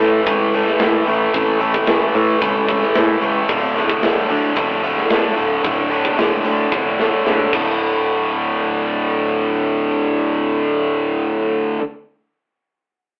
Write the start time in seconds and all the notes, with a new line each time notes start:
0.00 A2 E3 A3, open hi-hat
0.27 C#2 A2 E3 A3, kick, open hi-hat
0.54 A2 E3 A3, open hi-hat
0.67 snare
0.79 A2 E3 A3, snare, open hi-hat
1.07 A1 A2 E3 A3, open hi-hat
1.34 A1 A2 E3 A3, kick, open hi-hat
1.61 A2 E3 A3, open hi-hat
1.74 kick
1.87 A1 A2 E3 A3, snare, open hi-hat
2.15 A2 E3 A3, open hi-hat
2.41 C#2 A2 E3 A3, kick, open hi-hat
2.68 A2 E3 A3, kick, open hi-hat
2.83 snare
2.95 A2 E3 A3, snare, open hi-hat
3.22 C#2 A2 E3 A3, open hi-hat
3.49 D1 D2 A2 D3, kick, open hi-hat
3.76 D2 A2 D3, snare, open hi-hat
3.90 kick
4.03 D1 D2 A2 D3, snare, open hi-hat
4.29 D2 A2 D3, open hi-hat
4.56 F1 D2 A2 D3, kick, open hi-hat
4.83 D2 A2 D3, open hi-hat
4.98 snare
5.10 D2 A2 D3, snare, open hi-hat
5.36 D1 D2 A2 D3, open hi-hat
5.63 D1 D2 A2 D3, kick, open hi-hat
5.90 D2 A2 D3, open hi-hat
6.05 kick
6.17 D1 D2 A2 D3, snare, open hi-hat
6.45 D2 A2 D3, open hi-hat
6.72 F1 D2 A2 D3, kick
6.99 D2 A2 D3, snare
7.26 D2 A2 D3, snare
7.40 mid tom
7.52 D1 D2 A2, kick, crash
7.57 D3